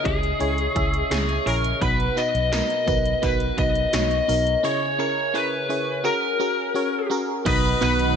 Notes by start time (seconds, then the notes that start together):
Already playing: C#3 C#4 E4 G#4 C#5 D#5
0.04 C#2 C#4 E4 G#4 D#5, kick, closed hi-hat
0.23 closed hi-hat
0.39 C#2 C#4 E4 G#4 C#5, closed hi-hat
0.58 closed hi-hat
0.75 C#2 C#4 E4 G#4 E5, kick, closed hi-hat
0.94 closed hi-hat
1.10 C#2 C#4 E4 G#4 C#5, snare, closed hi-hat
1.29 closed hi-hat
1.46 A#1 C#4 E4 G#4 A#4 C#5, open hi-hat
1.64 closed hi-hat
1.81 B1 B2 B3 D#4 F#4 B4, kick, closed hi-hat
2.00 closed hi-hat
2.16 B3 D#4 F#4 B4 D#5, closed hi-hat, tambourine
2.34 B1, closed hi-hat
2.51 B3 D#4 F#4 A#4 D#5, snare, closed hi-hat, tambourine
2.70 closed hi-hat
2.86 B1 B3 D#4 F#4 B4, kick, closed hi-hat, tambourine
3.06 closed hi-hat
3.22 B1 B3 D#4 F#4 B4, kick, closed hi-hat, tambourine
3.40 closed hi-hat
3.57 B1 B3 D#4 F#4 B4 D#5, kick, closed hi-hat
3.75 closed hi-hat
3.93 B1 B3 D#4 F#4 C#5 D#5, snare, closed hi-hat, tambourine
4.11 closed hi-hat
4.28 B1 B3 D#4 F#4 A#4, open hi-hat, tambourine
4.47 closed hi-hat
4.63 C#3 C#4 E4 G#4 C#5
4.98 C#4 E4 G#4 A#4 C#5
5.34 C#4 E4 G#4 B4 C#5
5.69 C#4 E4 G#4 C#5
6.04 C#4 F#4 G#4 A#4
6.39 C#4 F#4 G#4 A#4
6.74 C#4 F#4 G#4 C#5
7.10 C#4 F#4 G#4 A#4
7.45 B1 B2 D#3 F#3 B3 D#4 F#4 B4 D#5 B5, kick, closed hi-hat, crash, tambourine
7.64 closed hi-hat
7.81 B1 B3 D#4 F#4 B4 F#5 B5, closed hi-hat, tambourine
7.99 closed hi-hat